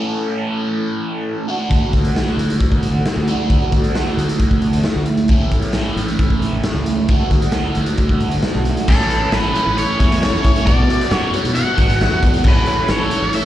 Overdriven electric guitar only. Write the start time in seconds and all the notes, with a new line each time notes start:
Already playing: A2 E3 A3 C#4 A4
1.48 D3 A3 D4 F#4
3.28 D3 A3 D4 F#4
5.30 A2 E3 A3 C#4 E4
7.09 D3 A3 D4 F#4
8.88 A2 E3 A3 C#4 E4
9.33 E3 A3 C#4 E4
9.55 A3 C#4 E4
9.77 A2 E3 A3 C#4 E4
10.00 A3 C#4 E4
10.22 E3 A3 C#4 E4
10.66 B2 F#3 B3 D4 F#4
11.12 F#3 B3 D4 F#4
11.33 B3 D4 F#4
11.55 B2 F#3 B3 D4 F#4
11.78 B3 D4 F#4
12.01 F#3 B3 D4 F#4
12.46 A2 E3 A3 C#4 A4
12.89 E3 A3 C#4 A4
13.12 A3 C#4 A4
13.34 A2 E3 A3 C#4 A4